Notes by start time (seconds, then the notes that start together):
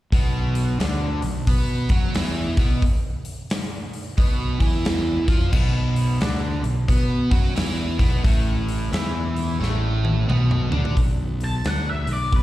0.12 B1 B2 B3, kick, open hi-hat
0.55 open hi-hat
0.79 D2 D3 D4, snare, open hi-hat
1.22 B1 B2, open hi-hat
1.47 B2 B3 B4, kick, open hi-hat
1.89 F#2 F#3 F#4, kick, open hi-hat
2.14 E2 E3 E4, snare, open hi-hat
2.57 B1 B2 B3, kick, open hi-hat
2.82 kick, open hi-hat
3.25 open hi-hat
3.50 snare, open hi-hat
3.93 open hi-hat
4.18 B1 B2 B3, kick, open hi-hat
4.60 E2 E3 E4, kick, open hi-hat
4.85 snare, open hi-hat
5.28 F2 F3 F4, kick, snare, open hi-hat
5.52 B1 B2 B3, kick, crash
5.96 open hi-hat
6.21 D2 D3 D4, snare, open hi-hat
6.63 B1 B2, open hi-hat
6.88 B2 B3 B4, kick, open hi-hat
7.31 F#2 F#3 F#4, kick, open hi-hat
7.56 E2 E3 E4, snare, open hi-hat
7.99 B1 B2 B3, kick, snare, open hi-hat
8.24 A1 A2 A3, kick, open hi-hat
8.68 open hi-hat
8.92 E2 E3 E4, snare, open hi-hat
9.36 open hi-hat
9.60 A1 A2 A3, snare
10.05 high tom
10.28 B1 B2 B3, mid tom
10.51 mid tom
10.71 D2 D3 D4, floor tom
10.85 floor tom
10.97 B1, kick, open hi-hat
11.40 A5, open hi-hat
11.65 D2 F#5, snare, open hi-hat
11.90 E5
12.07 B1, open hi-hat
12.13 D5
12.32 B2 B4, kick, open hi-hat